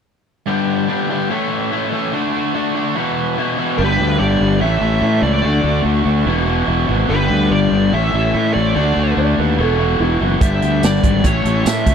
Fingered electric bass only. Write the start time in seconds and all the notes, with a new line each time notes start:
3.79 G1
3.99 D2
4.19 G1
4.41 G1
4.61 A1
4.81 A1
5.02 A2
5.22 C#2
5.44 D2
5.64 D2
5.85 D2
6.06 D2
6.26 E1
6.68 E1
6.89 G#1
7.09 G1
7.30 D2
7.51 G1
7.72 G1
7.93 A1
8.14 A1
8.35 A2
8.56 A1
8.76 D2
8.97 D2
9.17 D2
9.39 D#2
9.59 E1
10.00 E1
10.21 F#1
10.41 G1
10.63 D2
10.83 G1
11.03 G#1
11.24 A1
11.45 A1
11.66 A2
11.87 C#2